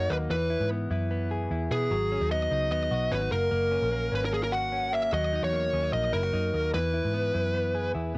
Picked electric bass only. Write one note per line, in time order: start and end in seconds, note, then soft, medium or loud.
0.10 0.27 D#2 loud
0.30 0.56 E2 loud
0.60 0.86 G#2 medium
0.91 1.48 F#2 medium
1.51 1.68 E2 medium
1.71 1.88 B2 medium
1.91 2.16 G#1 loud
2.21 2.47 D#2 loud
2.51 2.71 C#2 medium
2.71 2.88 D#2 medium
2.91 3.08 B1 medium
3.11 3.29 G#1 loud
3.32 3.49 F#1 loud
3.52 3.77 F#1 loud
3.82 4.08 A#1 loud
4.12 5.09 G#1 medium
5.13 5.38 D#2 loud
5.43 5.68 E2 medium
5.73 5.90 D#2 medium
5.93 6.10 A#1 loud
6.13 6.31 F#1 medium
6.34 6.51 F#2 medium
6.54 6.71 D#2 loud
6.74 7.00 E2 loud
7.05 7.30 G#2 loud
7.35 7.92 F#2 medium
7.95 8.12 E2 medium